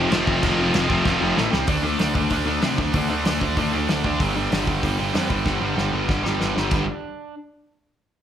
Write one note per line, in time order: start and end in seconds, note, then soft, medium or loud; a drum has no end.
0.00 0.10 F2 medium
0.00 0.11 C3 medium
0.00 0.11 F3 loud
0.00 0.11 A3 medium
0.00 0.11 C4 medium
0.00 1.37 C4 loud
0.10 0.22 F1 medium
0.10 0.26 F2 loud
0.10 0.26 C3 loud
0.10 0.25 F3 loud
0.10 0.41 F3 medium
0.10 0.42 A3 medium
0.10 0.43 C4 medium
0.10 snare loud
0.10 crash medium
0.14 0.43 F4 medium
0.26 0.38 F1 medium
0.26 0.40 F2 medium
0.26 0.41 C3 medium
0.26 0.42 F3 medium
0.26 kick medium
0.42 0.54 F1 loud
0.42 0.57 F2 medium
0.42 0.56 C3 medium
0.42 0.88 F3 loud
0.42 0.56 F3 loud
0.42 0.89 A3 loud
0.42 0.88 C4 loud
0.42 0.87 F4 loud
0.42 kick loud
0.42 crash medium
0.57 0.70 F1 medium
0.57 0.72 F2 medium
0.57 0.73 C3 medium
0.57 0.73 F3 loud
0.73 0.85 F1 loud
0.73 0.88 F2 medium
0.73 0.88 C3 medium
0.73 0.88 F3 medium
0.73 snare loud
0.73 crash medium
0.88 1.01 F1 medium
0.88 1.02 F2 medium
0.88 1.03 C3 loud
0.88 1.03 F3 loud
0.88 1.37 F3 medium
0.88 1.36 A3 medium
0.88 1.36 C4 medium
0.88 1.35 F4 medium
0.88 kick medium
1.03 1.17 F1 loud
1.03 1.20 F2 loud
1.03 1.19 C3 loud
1.03 1.19 F3 loud
1.03 kick medium
1.03 snare medium
1.20 1.32 F1 medium
1.20 1.36 F2 medium
1.20 1.36 C3 medium
1.20 1.35 F3 medium
1.36 1.48 A1 medium
1.36 1.51 A2 loud
1.36 1.51 E3 loud
1.36 1.52 A3 loud
1.36 snare medium
1.51 1.64 C2 medium
1.51 1.66 C3 loud
1.51 1.67 G3 medium
1.51 1.67 C4 loud
1.51 snare medium
1.66 1.95 D2 medium
1.66 1.84 D3 loud
1.66 1.83 A3 medium
1.66 1.82 D4 loud
1.66 kick loud
1.66 open hi-hat medium
1.83 1.98 D3 medium
1.83 1.98 A3 medium
1.83 1.99 D4 medium
1.98 2.27 D2 medium
1.98 2.16 D3 loud
1.98 2.15 A3 medium
1.98 2.14 D4 loud
1.98 snare loud
1.98 open hi-hat medium
2.14 2.29 D3 medium
2.14 2.29 A3 medium
2.14 2.31 D4 medium
2.14 kick medium
2.30 2.58 D2 medium
2.30 2.45 D3 medium
2.30 2.44 A3 medium
2.30 2.45 D4 loud
2.30 kick medium
2.30 open hi-hat medium
2.45 2.60 D3 medium
2.45 2.60 A3 medium
2.45 2.62 D4 medium
2.62 2.77 C3 medium
2.62 2.77 D3 loud
2.62 2.77 A3 loud
2.62 2.77 D4 loud
2.62 snare loud
2.62 open hi-hat medium
2.78 2.92 D2 medium
2.78 2.92 D3 medium
2.78 2.93 A3 medium
2.78 2.95 D4 medium
2.78 kick medium
2.93 3.07 D2 medium
2.93 3.10 D3 loud
2.93 3.10 A3 loud
2.93 3.10 D4 medium
2.93 kick medium
2.93 open hi-hat medium
3.10 3.23 D2 medium
3.10 3.24 D3 medium
3.10 3.25 A3 medium
3.10 3.26 D4 medium
3.25 3.40 D2 medium
3.25 3.41 D3 medium
3.25 3.41 A3 loud
3.25 3.42 D4 loud
3.25 snare loud
3.25 open hi-hat medium
3.41 3.55 D2 medium
3.41 3.56 D3 medium
3.41 3.56 A3 medium
3.41 3.58 D4 medium
3.41 kick medium
3.57 3.71 D2 medium
3.57 3.73 D3 medium
3.57 3.72 A3 loud
3.57 3.73 D4 loud
3.57 kick medium
3.57 open hi-hat soft
3.73 3.87 D2 medium
3.73 3.88 D3 medium
3.73 3.88 A3 medium
3.73 3.89 D4 medium
3.88 4.02 D2 medium
3.88 4.04 D3 loud
3.88 4.04 A3 loud
3.88 4.04 D4 loud
3.88 snare loud
3.88 open hi-hat medium
4.04 4.18 D2 medium
4.04 4.19 D3 medium
4.04 4.19 A3 medium
4.04 7.34 D4 medium
4.04 kick medium
4.20 4.47 G1 loud
4.20 4.35 G2 medium
4.20 4.34 D3 medium
4.20 4.34 G3 medium
4.20 kick loud
4.20 open hi-hat medium
4.35 4.51 G2 medium
4.35 4.51 D3 medium
4.35 4.52 G3 medium
4.51 4.79 G1 medium
4.51 4.68 G2 medium
4.51 4.67 D3 medium
4.51 4.67 G3 loud
4.51 snare loud
4.51 open hi-hat medium
4.67 4.82 G2 medium
4.67 4.82 D3 medium
4.67 4.83 G3 medium
4.67 kick medium
4.82 5.10 G1 medium
4.82 4.99 G2 loud
4.82 4.98 D3 medium
4.82 4.98 G3 loud
4.82 kick medium
4.82 open hi-hat soft
4.98 5.13 G2 medium
4.98 5.13 D3 medium
4.98 5.14 G3 medium
5.13 5.28 F2 medium
5.13 5.30 G2 medium
5.13 5.29 D3 medium
5.13 5.29 G3 loud
5.13 snare loud
5.13 open hi-hat medium
5.30 5.44 G1 medium
5.30 5.44 G2 medium
5.30 5.44 D3 medium
5.30 5.45 G3 medium
5.30 kick medium
5.45 5.59 G1 medium
5.45 5.60 G2 medium
5.45 5.60 D3 medium
5.45 5.60 G3 medium
5.45 kick medium
5.45 snare medium
5.61 5.75 G1 medium
5.61 5.75 G2 medium
5.61 5.75 D3 medium
5.61 5.76 G3 medium
5.76 5.90 G1 medium
5.76 5.92 G2 medium
5.76 5.92 D3 medium
5.76 5.91 G3 medium
5.76 snare medium
5.92 6.07 G1 medium
5.92 6.06 G2 medium
5.92 6.07 D3 medium
5.92 6.08 G3 medium
6.07 6.22 G1 medium
6.07 6.23 G2 medium
6.07 6.23 D3 medium
6.07 6.22 G3 medium
6.07 kick medium
6.07 snare medium
6.23 6.38 G1 medium
6.23 6.38 G2 medium
6.23 6.39 D3 medium
6.23 6.40 G3 medium
6.23 snare medium
6.40 6.53 G1 medium
6.40 6.56 G2 medium
6.40 6.55 D3 loud
6.40 6.55 G3 loud
6.40 snare medium
6.56 6.69 G1 medium
6.56 6.69 G2 medium
6.56 6.71 D3 medium
6.56 6.71 G3 medium
6.56 snare medium
6.71 6.86 G1 medium
6.71 6.84 G2 medium
6.71 6.84 D3 medium
6.71 6.84 G3 medium
6.71 kick loud
6.71 crash medium